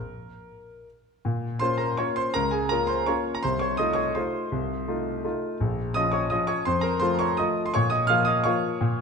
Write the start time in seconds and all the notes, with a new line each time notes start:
Already playing: A#4
1.25 A#2
1.59 A#3 C#4 F4 C5 C6
1.78 A#4 A#5
1.97 A#3 C#4 F4 C#5 C#6
2.16 C5 C6
2.34 C#2 A#4 A#5
2.51 G#4 G#5
2.69 A#3 C#4 F4 A#4 A#5
2.87 C5 C6
3.06 A#3 C#4 F4 C#5 C#6
3.35 A#5
3.43 C2 C5 C6
3.59 C#5 C#6
3.77 A3 D#4 F4 D#5 D#6
3.93 C#5 C#6
4.15 A3 D#4 F4 C5 C6
4.52 C2
4.88 A3 D#4 F4
5.24 A3 D#4 F4
5.60 A#1
5.94 F3 C#4 F4 D#5 D#6
6.12 C#5 C#6
6.30 F3 C#4 F4 D#5 D#6
6.47 C#5 C#6
6.65 F2 C5 C6
6.81 A#4 A#5
6.99 F3 A3 F4 C5 C6
7.19 C#5 C#6
7.37 F3 A3 F4 D#5 D#6
7.66 C6
7.74 A#2 C#5 C#6
7.90 D#5 D#6
8.07 F3 A#3 F4 F5 F6
8.25 D#5 D#6
8.44 F3 A#3 F4 C#5 C#6
8.81 A#2